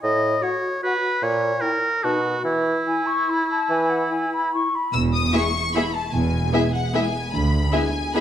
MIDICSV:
0, 0, Header, 1, 11, 480
1, 0, Start_track
1, 0, Key_signature, 4, "major"
1, 0, Tempo, 397351
1, 31, Time_signature, 3, 2, 24, 8
1, 1953, Tempo, 416956
1, 5313, Tempo, 401606
1, 9698, End_track
2, 0, Start_track
2, 0, Title_t, "Violin section"
2, 0, Program_c, 0, 48
2, 5784, Note_on_c, 0, 88, 63
2, 5877, Note_off_c, 0, 88, 0
2, 6025, Note_on_c, 0, 87, 63
2, 6263, Note_off_c, 0, 87, 0
2, 6273, Note_on_c, 0, 85, 72
2, 6751, Note_on_c, 0, 83, 58
2, 6762, Note_off_c, 0, 85, 0
2, 6984, Note_on_c, 0, 81, 57
2, 6993, Note_off_c, 0, 83, 0
2, 7210, Note_on_c, 0, 80, 55
2, 7219, Note_off_c, 0, 81, 0
2, 7940, Note_on_c, 0, 78, 54
2, 7942, Note_off_c, 0, 80, 0
2, 8186, Note_off_c, 0, 78, 0
2, 8195, Note_on_c, 0, 80, 61
2, 8650, Note_on_c, 0, 83, 55
2, 8659, Note_off_c, 0, 80, 0
2, 9123, Note_on_c, 0, 80, 60
2, 9129, Note_off_c, 0, 83, 0
2, 9618, Note_on_c, 0, 83, 60
2, 9627, Note_off_c, 0, 80, 0
2, 9698, Note_off_c, 0, 83, 0
2, 9698, End_track
3, 0, Start_track
3, 0, Title_t, "Flute"
3, 0, Program_c, 1, 73
3, 518, Note_on_c, 1, 78, 35
3, 607, Note_off_c, 1, 78, 0
3, 1036, Note_on_c, 1, 78, 34
3, 1117, Note_off_c, 1, 78, 0
3, 1971, Note_on_c, 1, 79, 33
3, 2057, Note_off_c, 1, 79, 0
3, 2429, Note_on_c, 1, 81, 33
3, 2515, Note_off_c, 1, 81, 0
3, 3395, Note_on_c, 1, 80, 44
3, 3619, Note_on_c, 1, 85, 49
3, 3636, Note_off_c, 1, 80, 0
3, 3886, Note_on_c, 1, 83, 41
3, 3903, Note_off_c, 1, 85, 0
3, 4120, Note_off_c, 1, 83, 0
3, 4132, Note_on_c, 1, 81, 42
3, 4362, Note_on_c, 1, 80, 46
3, 4379, Note_off_c, 1, 81, 0
3, 4579, Note_on_c, 1, 78, 41
3, 4596, Note_off_c, 1, 80, 0
3, 4821, Note_on_c, 1, 80, 39
3, 4839, Note_off_c, 1, 78, 0
3, 5069, Note_off_c, 1, 80, 0
3, 5079, Note_on_c, 1, 83, 45
3, 5314, Note_off_c, 1, 83, 0
3, 5322, Note_on_c, 1, 85, 47
3, 5570, Note_on_c, 1, 83, 41
3, 5588, Note_off_c, 1, 85, 0
3, 5797, Note_off_c, 1, 83, 0
3, 9698, End_track
4, 0, Start_track
4, 0, Title_t, "Violin section"
4, 0, Program_c, 2, 48
4, 6264, Note_on_c, 2, 76, 37
4, 6276, Note_on_c, 2, 68, 35
4, 6360, Note_off_c, 2, 76, 0
4, 6372, Note_off_c, 2, 68, 0
4, 6778, Note_on_c, 2, 68, 39
4, 6780, Note_on_c, 2, 76, 41
4, 6873, Note_off_c, 2, 68, 0
4, 6875, Note_off_c, 2, 76, 0
4, 7703, Note_on_c, 2, 68, 37
4, 7704, Note_on_c, 2, 76, 36
4, 7799, Note_off_c, 2, 68, 0
4, 7800, Note_off_c, 2, 76, 0
4, 8193, Note_on_c, 2, 68, 38
4, 8198, Note_on_c, 2, 76, 40
4, 8288, Note_off_c, 2, 68, 0
4, 8294, Note_off_c, 2, 76, 0
4, 9126, Note_on_c, 2, 76, 39
4, 9128, Note_on_c, 2, 68, 36
4, 9221, Note_off_c, 2, 76, 0
4, 9224, Note_off_c, 2, 68, 0
4, 9643, Note_on_c, 2, 68, 41
4, 9647, Note_on_c, 2, 76, 39
4, 9698, Note_off_c, 2, 68, 0
4, 9698, Note_off_c, 2, 76, 0
4, 9698, End_track
5, 0, Start_track
5, 0, Title_t, "Oboe"
5, 0, Program_c, 3, 68
5, 34, Note_on_c, 3, 75, 66
5, 514, Note_on_c, 3, 73, 55
5, 533, Note_off_c, 3, 75, 0
5, 997, Note_off_c, 3, 73, 0
5, 1004, Note_on_c, 3, 71, 61
5, 1486, Note_on_c, 3, 73, 56
5, 1504, Note_off_c, 3, 71, 0
5, 1947, Note_on_c, 3, 70, 56
5, 1965, Note_off_c, 3, 73, 0
5, 2437, Note_on_c, 3, 66, 50
5, 2454, Note_off_c, 3, 70, 0
5, 2903, Note_off_c, 3, 66, 0
5, 2909, Note_on_c, 3, 64, 52
5, 5269, Note_off_c, 3, 64, 0
5, 9698, End_track
6, 0, Start_track
6, 0, Title_t, "Clarinet"
6, 0, Program_c, 4, 71
6, 501, Note_on_c, 4, 66, 34
6, 681, Note_off_c, 4, 66, 0
6, 996, Note_on_c, 4, 66, 35
6, 1168, Note_off_c, 4, 66, 0
6, 1951, Note_on_c, 4, 64, 32
6, 2127, Note_off_c, 4, 64, 0
6, 2446, Note_on_c, 4, 63, 36
6, 2613, Note_off_c, 4, 63, 0
6, 3380, Note_on_c, 4, 64, 32
6, 3559, Note_off_c, 4, 64, 0
6, 3857, Note_on_c, 4, 64, 35
6, 4031, Note_off_c, 4, 64, 0
6, 4817, Note_on_c, 4, 64, 29
6, 4996, Note_off_c, 4, 64, 0
6, 5319, Note_on_c, 4, 64, 31
6, 5492, Note_off_c, 4, 64, 0
6, 9698, End_track
7, 0, Start_track
7, 0, Title_t, "Viola section"
7, 0, Program_c, 5, 48
7, 6265, Note_on_c, 5, 64, 36
7, 6267, Note_on_c, 5, 59, 36
7, 6361, Note_off_c, 5, 64, 0
7, 6363, Note_off_c, 5, 59, 0
7, 6763, Note_on_c, 5, 59, 38
7, 6763, Note_on_c, 5, 64, 40
7, 6858, Note_off_c, 5, 59, 0
7, 6859, Note_off_c, 5, 64, 0
7, 7695, Note_on_c, 5, 59, 37
7, 7695, Note_on_c, 5, 64, 36
7, 7791, Note_off_c, 5, 59, 0
7, 7791, Note_off_c, 5, 64, 0
7, 8189, Note_on_c, 5, 64, 41
7, 8192, Note_on_c, 5, 59, 40
7, 8284, Note_off_c, 5, 64, 0
7, 8288, Note_off_c, 5, 59, 0
7, 9128, Note_on_c, 5, 64, 37
7, 9132, Note_on_c, 5, 59, 36
7, 9223, Note_off_c, 5, 64, 0
7, 9228, Note_off_c, 5, 59, 0
7, 9630, Note_on_c, 5, 64, 41
7, 9632, Note_on_c, 5, 59, 40
7, 9698, Note_off_c, 5, 59, 0
7, 9698, Note_off_c, 5, 64, 0
7, 9698, End_track
8, 0, Start_track
8, 0, Title_t, "French horn section"
8, 0, Program_c, 6, 60
8, 6264, Note_on_c, 6, 64, 37
8, 6267, Note_on_c, 6, 56, 38
8, 6442, Note_off_c, 6, 64, 0
8, 6445, Note_off_c, 6, 56, 0
8, 6758, Note_on_c, 6, 56, 38
8, 6758, Note_on_c, 6, 64, 38
8, 6927, Note_off_c, 6, 56, 0
8, 6927, Note_off_c, 6, 64, 0
8, 7696, Note_on_c, 6, 56, 37
8, 7698, Note_on_c, 6, 64, 37
8, 7876, Note_off_c, 6, 56, 0
8, 7878, Note_off_c, 6, 64, 0
8, 8192, Note_on_c, 6, 56, 38
8, 8196, Note_on_c, 6, 64, 37
8, 8362, Note_off_c, 6, 56, 0
8, 8364, Note_off_c, 6, 64, 0
8, 9127, Note_on_c, 6, 56, 38
8, 9128, Note_on_c, 6, 64, 40
8, 9309, Note_off_c, 6, 56, 0
8, 9310, Note_off_c, 6, 64, 0
8, 9633, Note_on_c, 6, 64, 39
8, 9638, Note_on_c, 6, 56, 38
8, 9698, Note_off_c, 6, 56, 0
8, 9698, Note_off_c, 6, 64, 0
8, 9698, End_track
9, 0, Start_track
9, 0, Title_t, "Bassoon"
9, 0, Program_c, 7, 70
9, 44, Note_on_c, 7, 45, 49
9, 432, Note_off_c, 7, 45, 0
9, 1477, Note_on_c, 7, 46, 43
9, 1871, Note_off_c, 7, 46, 0
9, 2445, Note_on_c, 7, 47, 38
9, 2831, Note_off_c, 7, 47, 0
9, 2903, Note_on_c, 7, 52, 41
9, 3297, Note_off_c, 7, 52, 0
9, 4352, Note_on_c, 7, 52, 42
9, 4738, Note_off_c, 7, 52, 0
9, 9698, End_track
10, 0, Start_track
10, 0, Title_t, "Cello section"
10, 0, Program_c, 8, 48
10, 5798, Note_on_c, 8, 40, 48
10, 6186, Note_off_c, 8, 40, 0
10, 7220, Note_on_c, 8, 40, 51
10, 7615, Note_off_c, 8, 40, 0
10, 8655, Note_on_c, 8, 38, 55
10, 9048, Note_off_c, 8, 38, 0
10, 9698, End_track
11, 0, Start_track
11, 0, Title_t, "Double bass section"
11, 0, Program_c, 10, 48
11, 5795, Note_on_c, 10, 28, 50
11, 6185, Note_off_c, 10, 28, 0
11, 7227, Note_on_c, 10, 28, 50
11, 7618, Note_off_c, 10, 28, 0
11, 8674, Note_on_c, 10, 38, 50
11, 9057, Note_off_c, 10, 38, 0
11, 9698, End_track
0, 0, End_of_file